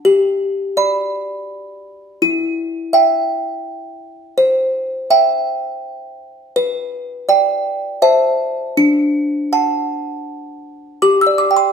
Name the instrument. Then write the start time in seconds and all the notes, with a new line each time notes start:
music box
0.05 G4
0.77 D5 B5
2.22 E4
2.93 E5 G5
4.38 C5
5.10 E5 G5
6.56 B4
7.29 D5 G5
8.02 C5 E5 A5
8.77 D4
9.53 F#5 A5
11.02 G4 D6
11.21 E6
11.27 D5
11.38 D6
11.51 G5
11.56 C6